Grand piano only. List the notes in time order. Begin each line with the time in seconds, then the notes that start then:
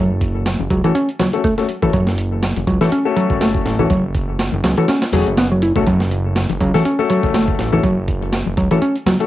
0.84 A3 C#4 F#4 A4
1.33 A3 C#4 F#4 A4
1.58 A3 C#4 F#4 A4
1.83 A3 C#4 F#4 A4
2.81 A3 C#4 F#4 A4
3.05 A3 C#4 F#4 A4
3.79 A3 C#4 F#4 A4
4.78 A3 C#4 F#4 A4
5.13 A3 C#4 F#4 G#4
5.76 A3 C#4 F#4 A4
6.74 A3 C#4 F#4 A4
6.99 A3 C#4 F#4 A4
7.73 A3 C#4 F#4 A4
8.71 A3 C#4 F#4 A4
9.20 A3 C#4 F#4 A4